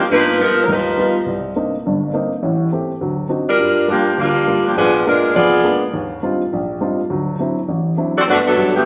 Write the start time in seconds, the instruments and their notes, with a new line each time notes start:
0.10 upright piano G2 B3, saxophone section F3 A#3 D#4 B4
0.39 saxophone section F3 B3 D#4 A#4, upright piano G3 B3 D#4 F4
0.64 upright piano D#2, saxophone section A#4
0.68 upright piano G3, saxophone section B4
0.72 saxophone section F3 D#4 A#4
0.97 upright piano G3 B3 D#4 F4
1.26 upright piano C2
1.56 upright piano A#3 C4 D4 D#4
1.86 upright piano G1 G2
2.14 upright piano A#3 C4 D4 D#4
2.43 upright piano A1 A2
2.72 upright piano A3 C4 G4
3.01 upright piano D2 F#3
3.29 upright piano C4 D4 D#4 F#4
3.49 saxophone section G3 D4 F4 A#4
3.59 upright piano G2
3.88 saxophone section F3 A#3 D4 G4, upright piano G3 A#3 F4
4.18 upright piano D2, saxophone section G3 A#3 D4 F4
4.48 upright piano G3 A#3 F4
4.66 saxophone section F3 A#3 D4 G4
4.77 upright piano A#1, saxophone section F3 B3 D4 G#4
5.06 upright piano G#3 A#3 B3 D4, saxophone section G#3 D4 F4 A#4
5.36 upright piano F1 F2, saxophone section B3 F4 G#4 D5
5.64 upright piano G#3 A#3 B3 D4
5.94 upright piano D#2
6.23 upright piano G3 C4 D4 D#4 F4
6.53 upright piano A#1
6.81 upright piano G3 C4 D4 D#4 F4
7.10 upright piano D2 F#3
7.39 upright piano F#3 C4 D4 E4
7.69 upright piano A1
7.97 upright piano F#3 C4 D4 E4
8.18 saxophone section C4 F#4 A4 D5
8.26 upright piano G2 B3, saxophone section A3 D4 F#4 B4
8.47 saxophone section F#3 B3 D4 A4
8.56 upright piano G3 A3 B3 F#4
8.76 saxophone section D3 A3 B3 G4